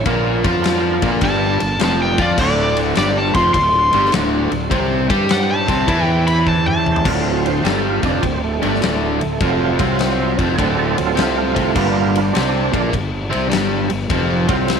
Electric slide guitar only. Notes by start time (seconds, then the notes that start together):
1.25 A5
1.84 A5
2.02 G5
2.22 D5
2.41 D5
2.98 D5
3.18 A5
3.35 C6
3.54 C6
5.31 F#5
5.50 A5
6.04 G5
6.27 B5
6.49 A5
6.68 A5